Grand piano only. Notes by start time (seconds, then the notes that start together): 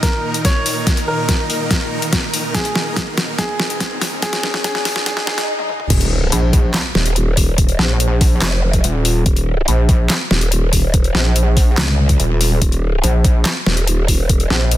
0.03 A#4
0.45 C#5
1.08 A#4
2.55 G#4
3.39 G#4
4.22 G#4
4.64 G#4
5.06 G#4
5.27 G#4